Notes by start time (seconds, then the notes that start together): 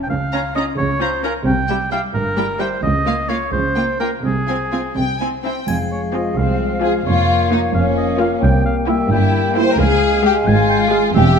0.03 G5
0.09 C#2 C#3 F5
0.33 C#4 F4 A#5
0.55 C#4 F4 D#5 A#5
0.78 C#2 C#3 C#5
1.00 C#4 F4 C5 A#5
1.23 C#4 F4 A#4 A#5
1.46 C2 C3 G5
1.68 G3 E4 G5
1.91 G3 E4 F5 G5
2.14 G1 G2 A#4
2.37 G3 E4 G5
2.59 G3 E4 C5 G5
2.83 C#2 C#3 D#5
3.05 A#3 F4 F5
3.29 A#3 F4 C#5 F5
3.52 C#2 C#3 C5
3.75 A#3 F4 G5
4.00 A#3 F4 A#4 G5
4.24 C2 C3 G#4
4.47 C4 F4 G#5
4.72 C4 F4 G#5
4.96 C2 C3 G5
5.19 C4 E4 G#5
5.44 C4 E4 G5
5.66 F1 F2 F3 G#3 G#4 F5 G#5, triangle
5.92 C#5
6.13 C4 F4 D#5 G#5
6.36 C2 C4 F5
6.82 C4 F4 G#4 G#5
7.05 F1 F2 A#3 F4 A#4 C#5
7.51 A#3 D#4 F4 F5
7.74 F1 F2 C#4 F5
7.97 D#5
8.19 A#3 F4 F5
8.41 C2 G3 G5
8.65 F5
8.87 A#3 E4 E5 G5
9.11 G1 G2 E4 G5
9.55 A#3 E4 C5 G5
9.71 A#4
9.78 C#2 G#3 G#4 F5 G#5
10.23 G#3 G4 G#4 F5
10.46 G#1 G#2 F4 G#5
10.70 G5
10.92 G#3 G#4 F5
11.14 E1 E2 C4 G4 E5 G5